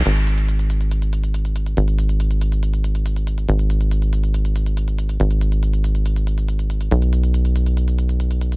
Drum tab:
HH |xxxxxxxxxxxxxxxx|xxxxxxxxxxxxxxxx|xxxxxxxxxxxxxxxx|xxxxxxxxxxxxxxxx|

HH |xxxxxxxxxxxxxxxx|